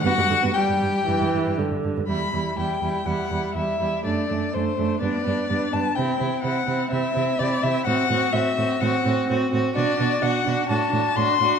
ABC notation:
X:1
M:4/4
L:1/16
Q:1/4=125
K:Clyd
V:1 name="Violin"
f4 g8 z4 | [K:Em] b4 g4 f4 e4 | d4 c4 d6 a2 | g4 f4 e4 d2 e2 |
f4 e4 f4 z4 | [K:Bphr] d4 f4 a4 c'4 |]
V:2 name="Violin"
F4 G8 z4 | [K:Em] E2 E2 E2 E2 E2 E2 E2 E2 | D2 D2 D2 D2 D2 D2 D2 D2 | E2 E2 E2 E2 E2 E2 E2 E2 |
F2 F2 F2 F2 F2 F2 F2 F2 | [K:Bphr] F2 F2 F2 F2 F2 F2 F2 F2 |]
V:3 name="Viola"
B, G, D, B, G,4 E,4 D,4 | [K:Em] G,2 G,2 G,2 G,2 G,2 G,2 G,2 G,2 | A,2 A,2 A,2 A,2 B,2 B,2 B,2 B,2 | C2 C2 C2 C2 C2 C2 C2 C2 |
C2 C2 C2 C2 C2 C2 C2 C2 | [K:Bphr] D2 D2 D2 D2 D2 D2 D2 D2 |]
V:4 name="Cello" clef=bass
G,, G,, G,, G,, z G,, G,, z G,, G,, G,, G,, G,, G,, G,, G,, | [K:Em] E,,2 E,,2 E,,2 E,,2 E,,2 E,,2 E,,2 E,,2 | F,,2 F,,2 F,,2 F,,2 G,,2 G,,2 G,,2 G,,2 | C,2 C,2 C,2 C,2 C,2 C,2 C,2 C,2 |
A,,2 A,,2 A,,2 A,,2 A,,2 A,,2 A,,2 A,,2 | [K:Bphr] B,,2 B,,2 B,,2 B,,2 A,,2 A,,2 A,,2 A,,2 |]